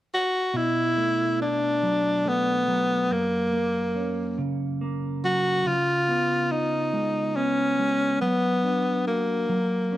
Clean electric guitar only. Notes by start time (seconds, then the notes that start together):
0.54 B2
0.97 A3
1.40 D4
1.83 F#3
2.25 A3
2.68 F#3
3.10 F#2
3.53 A#3
3.96 C#4
4.38 C#3
4.81 A#3
5.24 F#3
5.66 C#3
6.09 B3
6.51 F4
6.93 G#3
7.36 B3
7.79 G#3
8.22 F#3
8.64 D4
9.07 F#4
9.49 F#3
9.92 C#4